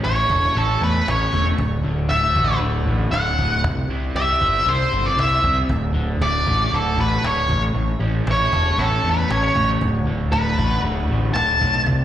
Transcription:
Already playing: A2 C#4
0.04 A1 E4 C#5, cajon slap
0.29 E1 A4, cajon bass, cajon slap
0.55 A1 C#4 A4
0.81 E2 A3 B4
1.07 A1 C#4 C#5, cajon slap
1.33 E1 A3, cajon bass
1.58 D1 D2, cajon bass
1.84 D1 D3, cajon slap
2.09 D1 A3 E5, cajon slap
2.36 A1 F#4, cajon bass
2.60 D1 D3, cajon slap
2.86 A1 A2, cajon slap
3.11 D1 D3 F#5, cajon slap
3.39 D1 A2, cajon bass
3.64 C2 C3, cajon bass
3.88 C2 E4, cajon slap
4.15 C2 G4 E5, cajon slap
4.41 G1 C5, cajon bass, cajon slap
4.66 C2 E4 C5
4.92 G1 C4
5.06 D5
5.16 C2 E4 E5, cajon slap
5.43 C2 C4, cajon bass
5.68 D1 D2, cajon bass
5.94 D1 D3, cajon slap
6.19 D1 A3 D5, cajon slap
6.46 A1 F#4, cajon bass
6.72 D1 D3 A4, cajon slap
6.96 A1 A2 B4
7.23 D1 D3 C#5, cajon slap
7.49 A1 A2, cajon bass
7.74 A1 A2, cajon slap
7.99 A1 C#4, cajon slap
8.26 A1 E4, cajon slap
8.31 C#5
8.52 E1 A4, cajon bass
8.78 A1 C#4 A4, cajon slap
9.04 E2 A3, cajon slap
9.11 B4
9.29 A1 C#4 C#5, cajon slap
9.56 A1 A3, cajon bass
9.81 D1 D2, cajon bass
10.05 D1 D3
10.32 D1 A3 B4, cajon slap
10.58 A1 F#4, cajon bass
10.83 D1 D3, cajon slap
11.09 A1 A2, cajon slap
11.34 D1 D3 A5, cajon slap
11.61 B1 A2, cajon bass
11.87 C2 C3, cajon bass

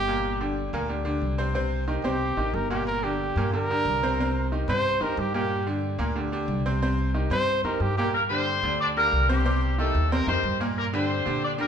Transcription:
Already playing: G1 G4
0.08 A#2 A#3 A#4
0.41 D3 D4 G4
0.73 D2 A#2 A#3 A#4
0.89 D3 D4 G4
1.05 D3 D4 G4
1.22 C2
1.38 C3 C4 C5
1.54 C3 C4 C5
1.88 D#3 D#4 G4
2.04 C2 C3 C4 G4 C5
2.37 A1 D#3 D#4 G4
2.53 G1 A#4
2.70 A#2 A#3 G4 A#4
2.87 A#4
3.03 D3 D4 G4
3.36 G2 A#2 A#3 A#4
3.53 D3 D4 G4 A#4
3.70 D3 D4 G4
3.85 C2
4.03 C3 C4 C5
4.20 C3 C4 C5
4.52 D#3 D#4 G4
4.68 G2 C3 C4 C5
5.01 F2 D#3 D#4 G4 A#4
5.17 G2 G4
5.34 A#2 A#3 G4 A#4
5.67 D3 D4 G4
5.99 D2 A#2 A#3 A#4
6.16 D3 D4 G4
6.32 D3 D4 G4
6.48 C2
6.66 C3 C4 C5
6.82 C3 C4 C5
7.14 D#3 D#4 G4
7.30 G2 C3 C4 C5
7.64 F2 D#3 D#4 G4 A#4
7.80 G2 G4
7.98 A#2 A#3 G4 A#4
8.14 A#3 A#4
8.30 D3 C4 D4 G4 C5
8.63 D2 D3 D4 G4
8.81 D4 D5
8.97 D3 A#3 D4 G4 A#4
9.12 C2
9.29 C3 G3 C4 G4 C5
9.45 C3 C4 C5
9.79 D#3 A3 D#4 G4 A4
9.95 D#2
10.12 C3 A#3 C4 A#4 C5
10.27 F2 D#3 C4 D#4 G4 C5
10.43 G2
10.60 A#2 A#3 A#4
10.78 A#3 A#4
10.93 D3 C4 D4 G4 C5
11.25 A#2 D3 D4 G4
11.44 D4 D5
11.58 D3 A#3 D4 G4 A#4

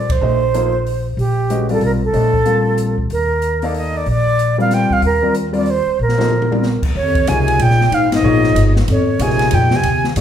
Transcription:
Already playing: A#1 D5
0.10 C5, kick, ride
0.21 A#1 A3 D4 G4 C5 D#5
0.54 F3 A#3 D#4 A4 C5, closed hi-hat
0.86 open hi-hat
1.17 A#1 G4, open hi-hat
1.50 G#3 C#4 F#4 B4 D#5, closed hi-hat
1.69 G3 C4 F4 A4 A#4 D5, open hi-hat
1.81 B1, open hi-hat
1.86 A#4
2.04 A4
2.13 A#1 A3 D4 G4 C5 D#5, open hi-hat
2.34 kick
2.45 G3 A#3 C4 F4 F5, closed hi-hat
2.78 closed hi-hat
2.98 kick
3.10 D#2 A#4, open hi-hat
3.42 closed hi-hat
3.62 A#3 D#4 A4 D5 F5, open hi-hat
3.74 D#5, open hi-hat
3.97 D5
4.06 A#1, open hi-hat
4.10 D5
4.39 closed hi-hat
4.58 G3 C4 F4 A#4 D5 F5
4.71 G5, snare, closed hi-hat
4.90 F5, muted upright bass stroke, kick
5.02 D#2 A#4, open hi-hat
5.22 G3 C4 F4 A#4 D5
5.34 closed hi-hat
5.53 G3 C4 F4 A#4 D5, open hi-hat
5.57 D5
5.66 open hi-hat
5.70 C5
5.86 muted upright bass stroke
5.99 A#1 A#4
6.09 snare
6.18 F3 A#3 D#4 A4 C5, snare
6.30 high tom
6.42 high tom
6.51 G3 C4 F4 A#4 D5, high tom
6.63 snare
6.83 muted upright bass stroke, kick, crash
6.95 D#2 F2 C#5
7.15 kick, ride
7.27 C#2 C3 F3 A#3 D#4 G#4 C#5 G#5, hi-hat pedal, ride
7.48 ride
7.59 A#1 A#2 G5, ride
7.70 snare
7.81 snare
7.91 G#1 G#2 F5, ride
8.11 G#2, snare, ride
8.15 D#5
8.23 A#1 F3 A#3 D#4 G#4 C#5
8.44 snare
8.55 G1, hi-hat pedal, ride
8.76 snare
8.88 G#1 F2 C#5, ride
9.19 A#1 C3 F3 A#3 D#4 G#4 C#5 G#5, hi-hat pedal, ride
9.30 snare
9.39 snare, ride
9.51 F2 G5, ride
9.55 A#2
9.71 C3, snare
9.76 G#5
9.83 D#2, ride
10.04 snare
10.16 G2 F3 A#3 D#4 G#4 C#5, hi-hat pedal, ride

